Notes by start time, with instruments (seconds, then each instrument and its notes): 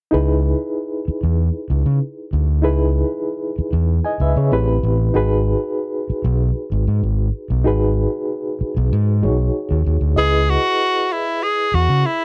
0.11 fingered electric bass C#2, reed electric piano D#4 E4 G#4 B4
1.08 muted fingered electric bass stroke
1.23 fingered electric bass E2
1.70 fingered electric bass C#2
1.86 fingered electric bass C#3
2.33 fingered electric bass D2
2.62 fingered electric bass C#2, reed electric piano D#4 E4 G#4 B4
3.58 muted fingered electric bass stroke
3.73 fingered electric bass E2
4.04 reed electric piano D#5 G#5
4.20 fingered electric bass C#2, reed electric piano B4 E5
4.36 fingered electric bass C#3, reed electric piano G#4 C#5
4.51 fingered electric bass A1, reed electric piano C4 E4 G4 B4
4.83 fingered electric bass A1
5.14 fingered electric bass G#1, reed electric piano D#4 F#4 G#4 B4
6.10 muted fingered electric bass stroke
6.24 fingered electric bass B1
6.72 fingered electric bass G#1
6.87 fingered electric bass G#2
7.03 fingered electric bass G#1
7.50 fingered electric bass B1
7.64 fingered electric bass G#1, reed electric piano D#4 F#4 G#4 B4
8.61 muted fingered electric bass stroke
8.77 fingered electric bass B1
8.93 fingered electric bass G#2
9.22 fingered electric bass B1, reed electric piano D#4 F#4 G#4 C#5
9.71 fingered electric bass D#2
9.86 fingered electric bass D#2
10.01 fingered electric bass D2
10.16 fingered electric bass C#2, reed electric piano E4 G#4 B4 D#5, tenor saxophone G#4
10.50 tenor saxophone F#4
11.12 tenor saxophone E4
11.43 tenor saxophone G#4
11.74 fingered electric bass E2, tenor saxophone F#4
11.89 fingered electric bass C#3
12.06 tenor saxophone E4